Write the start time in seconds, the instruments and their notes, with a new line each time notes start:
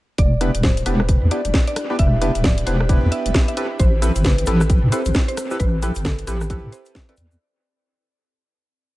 0.18 wobble bass E1, ambient pad D4 E4 G4 B4, synth pluck D5, kick, closed hi-hat
0.41 synth stab B3 D4 E4 G4 B4, cross-stick, open hi-hat
0.50 ambient pad G4
0.55 wobble bass D1, ambient pad E5, closed hi-hat
0.63 synth pluck C5, kick, snare
0.77 closed hi-hat
0.86 wobble bass E1, synth stab B3 D4 E4 G4 B4, synth pluck B4, open hi-hat
1.00 cross-stick
1.09 kick, closed hi-hat
1.22 wobble bass E2, ambient pad B5
1.31 synth stab B3 D4 E4 G4 B4, synth pluck D5, open hi-hat
1.45 wobble bass E1, closed hi-hat
1.54 kick, snare
1.67 synth pluck D5, closed hi-hat
1.76 cross-stick, open hi-hat
1.90 synth stab B3 D4 E4 G4 B4
1.99 wobble bass E1, synth pluck E5, kick, closed hi-hat
2.21 synth stab B3 D4 E4 G4 B4, cross-stick, open hi-hat
2.35 wobble bass D1, closed hi-hat
2.44 synth pluck D5, kick, snare
2.58 closed hi-hat
2.66 wobble bass E1, synth stab B3 D4 E4 G4 B4, synth pluck C5, open hi-hat
2.80 cross-stick
2.89 synth stab B3 D4 E4 G4 B4, kick, closed hi-hat
3.03 wobble bass E2
3.12 synth pluck E5, open hi-hat
3.26 wobble bass E1, closed hi-hat
3.34 kick, snare
3.48 synth pluck E5, closed hi-hat
3.57 synth stab C4 E4 G4 A4 B4, ambient pad C4, open hi-hat
3.79 wobble bass A1, synth pluck C5, kick, closed hi-hat, cabasa
3.87 ambient pad A4
4.02 synth stab C4 E4 G4 A4 B4, cross-stick, open hi-hat, cabasa
4.16 wobble bass G1, closed hi-hat, cabasa
4.24 synth pluck B4, ambient pad G5, kick, snare, cabasa
4.38 closed hi-hat
4.46 wobble bass A1, synth stab C4 E4 G4 A4 B4, synth pluck A4, open hi-hat, cabasa
4.61 cross-stick, cabasa
4.70 kick, closed hi-hat, cabasa
4.83 wobble bass A2
4.92 synth stab C4 E4 G4 A4 B4, synth pluck C5, open hi-hat, cabasa
5.05 wobble bass A1, closed hi-hat, cabasa
5.14 kick, snare, cabasa
5.28 synth pluck C5, closed hi-hat
5.37 ambient pad A4, cross-stick, open hi-hat, cabasa
5.51 synth stab C4 E4 G4 A4 B4, cabasa
5.59 wobble bass A1, synth pluck B4, kick, closed hi-hat, cabasa
5.82 synth stab C4 E4 G4 A4 B4, cross-stick, open hi-hat, cabasa
5.95 wobble bass G1, closed hi-hat, cabasa
6.05 synth pluck A4, kick, snare, cabasa
6.19 closed hi-hat
6.27 wobble bass A1, synth stab C4 E4 G4 A4 B4, synth pluck G4, open hi-hat, cabasa
6.41 cross-stick, cabasa
6.50 synth stab C4 E4 G4 A4 B4, kick, closed hi-hat, cabasa
6.64 wobble bass A2
6.72 synth pluck C5, open hi-hat, cabasa
6.85 closed hi-hat, cabasa
6.95 kick, snare, cabasa
7.09 synth stab C4 E4 G4 A4 B4, synth pluck D5, closed hi-hat
7.17 wobble bass E2, open hi-hat, cabasa
7.31 cabasa